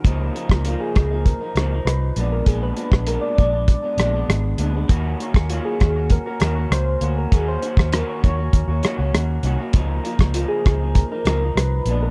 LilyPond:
<<
  \new Staff \with { instrumentName = "Synth keys" } { \time 4/4 \key des \major \tempo 4 = 99 r4 f'16 aes'8. bes'16 bes'8. ces''8. bes'16 | aes'16 ces''8. bes'16 d''16 d''4. r4 | r4 f'16 aes'8. bes'16 bes'8. c''8. bes'16 | aes'16 c''8. bes'16 des''16 des''4. r4 |
r4 f'16 aes'8. bes'16 bes'8. ces''8. bes'16 | }
  \new Staff \with { instrumentName = "Clean electric guitar" } { \time 4/4 \key des \major <des f bes ees'>8 <des f bes ees'>16 <f bes ees'>16 <des f bes ees'>8 <des f bes ees'>16 <f bes ees'>8 <f bes ees'>16 <des f bes ees'>16 <f ees'>8. <bes, aes ces' d'>8 | <bes, aes ces' d'>8 <bes, aes ces' d'>16 <aes ces' d'>16 <bes, aes ces' d'>8 <bes, aes ces' d'>16 <aes ces' d'>8 <aes ces' d'>16 <bes, aes ces' d'>16 <aes ces' d'>8. <bes, aes ces' d'>16 <aes ces' d'>16 | <ees bes des' ges'>8 <ees bes des' ges'>16 <bes des' ges'>16 <ees bes des' ges'>8 <ees bes des' ges'>16 <bes des' ges'>8 <bes des' ges'>16 <ees bes des' ges'>16 <bes des' ges'>8. <bes des' ges'>8 | <ees bes des' ges'>8 <ees bes des' ges'>16 <bes des' ges'>16 <ees bes des' ges'>8 <ees bes des' ges'>16 <bes des' ges'>8 <bes des' ges'>16 <ees bes des' ges'>16 <bes des' ges'>8. <ees bes des' ges'>16 <bes des' ges'>16 |
<des f bes ees'>8 <des f bes ees'>16 <f bes ees'>16 <des f bes ees'>8 <des f bes ees'>16 <f bes ees'>8 <f bes ees'>16 <des f bes ees'>16 <f ees'>8. <bes, aes ces' d'>8 | }
  \new Staff \with { instrumentName = "Fingered electric bass" } { \clef bass \time 4/4 \key des \major des,8 r16 des,8 r16 des,8. r16 des,8 c,8 bes,,8 | bes,,8 r16 bes,,8 r16 bes,,8. r16 bes,,8 aes,,8 d,8 | ees,8 r16 ees,8 r16 ees,8. r16 ees,8 des,8 d,8 | ees,8 r16 ees,8 r16 ees,8 ees,16 ees,16 r16 des,16 ees,8 c,16 r16 |
des,8 r16 des,8 r16 des,8. r16 des,8 c,8 bes,,8 | }
  \new DrumStaff \with { instrumentName = "Drums" } \drummode { \time 4/4 <hh bd>8 hh16 <bd ss>16 hh8 <hh bd ss>8 <hh bd>8 <hh ss>8 <hh ss>8 hh8 | <hh bd>8 hh16 <bd ss>16 hh8 <hh bd>8 <hh bd>8 <hh ss>8 <hh ss>8 hh8 | <hh bd>8 hh16 <bd ss>16 hh8 <hh bd ss>8 <hh bd>8 <hh ss>8 <hh ss>8 hh8 | <hh bd>8 hh16 <bd ss>16 <hh ss>8 <hh bd>8 <hh bd>8 <hh ss>8 <hh ss>8 hh8 |
<hh bd>8 hh16 <bd ss>16 hh8 <hh bd ss>8 <hh bd>8 <hh ss>8 <hh ss>8 hh8 | }
>>